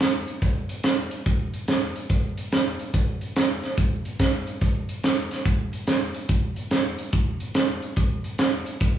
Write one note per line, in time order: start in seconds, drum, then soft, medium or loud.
0.00 snare loud
0.00 closed hi-hat medium
0.28 closed hi-hat medium
0.42 kick medium
0.42 closed hi-hat medium
0.69 closed hi-hat medium
0.84 snare loud
0.84 closed hi-hat medium
1.11 closed hi-hat medium
1.26 kick loud
1.26 closed hi-hat medium
1.54 closed hi-hat medium
1.68 snare loud
1.68 closed hi-hat medium
1.96 closed hi-hat medium
2.10 kick medium
2.10 closed hi-hat medium
2.38 closed hi-hat medium
2.52 snare loud
2.52 closed hi-hat medium
2.79 closed hi-hat medium
2.94 kick loud
2.94 closed hi-hat medium
3.21 closed hi-hat medium
3.36 snare loud
3.36 closed hi-hat medium
3.63 snare soft
3.63 closed hi-hat medium
3.78 kick loud
3.78 closed hi-hat medium
4.05 closed hi-hat medium
4.19 kick medium
4.19 snare loud
4.19 closed hi-hat medium
4.47 closed hi-hat medium
4.61 kick loud
4.61 closed hi-hat medium
4.89 closed hi-hat medium
5.04 snare loud
5.04 closed hi-hat medium
5.31 snare soft
5.31 closed hi-hat medium
5.46 kick loud
5.46 closed hi-hat medium
5.73 closed hi-hat medium
5.87 snare loud
5.87 closed hi-hat medium
6.14 closed hi-hat medium
6.29 kick loud
6.29 closed hi-hat medium
6.56 closed hi-hat medium
6.71 snare loud
6.71 closed hi-hat medium
6.98 closed hi-hat medium
7.13 kick loud
7.13 closed hi-hat medium
7.40 closed hi-hat medium
7.55 snare loud
7.55 closed hi-hat medium
7.82 closed hi-hat medium
7.96 kick loud
7.96 closed hi-hat medium
8.24 closed hi-hat medium
8.38 snare loud
8.38 closed hi-hat medium
8.66 closed hi-hat medium
8.80 kick loud
8.80 closed hi-hat medium